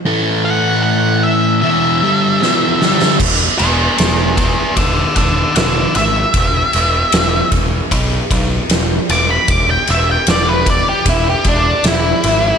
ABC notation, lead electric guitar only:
X:1
M:4/4
L:1/16
Q:1/4=76
K:A
V:1 name="Lead electric guitar"
z2 f2 f2 e2 e8 | z2 [Ge]2 [Ge]2 [Ge]2 [df]2 [df]2 [df]2 e2- | e6 z8 d' b | d' =g e g d B d =G E G D2 E4 |]